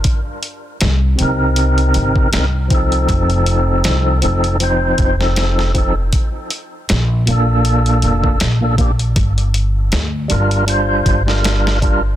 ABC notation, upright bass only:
X:1
M:4/4
L:1/8
Q:"Swing 16ths" 1/4=79
K:Cdor
V:1 name="Upright bass" clef=bass
z2 C,, C,,2 G,,, C,,2 | F,,,2 C,, F,,,2 F,,,3 | z2 B,,, B,,,2 F,,, B,,,2 | G,,,2 D,, G,,,2 G,,,3 |]